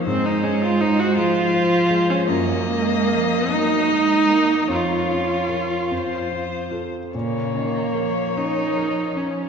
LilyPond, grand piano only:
\new Staff \with { instrumentName = "Grand piano" } { \time 6/8 \key bes \minor \tempo 4. = 50 aes,8 aes8 c''8 aes8 c''8 aes8 | ges,8 bes8 bes'8 bes8 bes'8 bes8 | f,8 des'8 <f' bes'>8 f,8 c'8 <f' a'>8 | bes,8 des'8 bes'8 des'8 bes'8 des'8 | }